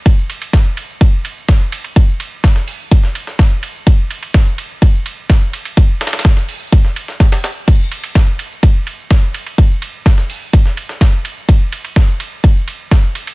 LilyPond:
\new DrumStaff \with { instrumentName = "Drums" } \drummode { \time 4/4 \tempo 4 = 126 <bd cymr>8 <hho cymr>16 cymr16 <bd cymr sn>8 <hho cymr>8 <bd cymr>8 <hho cymr>8 <bd cymr sn>8 <hho cymr>16 cymr16 | <bd cymr>8 <hho cymr>8 <bd cymr sn>16 sn16 hho8 <bd cymr>16 sn16 <hho cymr>16 sn16 <bd cymr sn>8 <hho cymr>8 | <bd cymr>8 <hho cymr>16 cymr16 <bd cymr sn>8 <hho cymr>8 <bd cymr>8 <hho cymr>8 <bd cymr sn>8 <hho cymr>16 cymr16 | <bd cymr>8 <hho cymr sn>32 <cymr sn>32 <cymr sn>32 <cymr sn>32 <bd cymr sn>16 sn16 hho8 <bd cymr>16 sn16 <hho cymr>16 sn16 <bd cymr sn>16 <cymr sn>16 <hho cymr sn>8 |
<cymc bd cymr>8 <hho cymr>16 cymr16 <bd cymr sn>8 <hho cymr>8 <bd cymr>8 <hho cymr>8 <bd cymr sn>8 <hho cymr>16 cymr16 | <bd cymr>8 <hho cymr>8 <bd cymr sn>16 sn16 hho8 <bd cymr>16 sn16 <hho cymr>16 sn16 <bd cymr sn>8 <hho cymr>8 | <bd cymr>8 <hho cymr>16 cymr16 <bd cymr sn>8 <hho cymr>8 <bd cymr>8 <hho cymr>8 <bd cymr sn>8 <hho cymr>16 cymr16 | }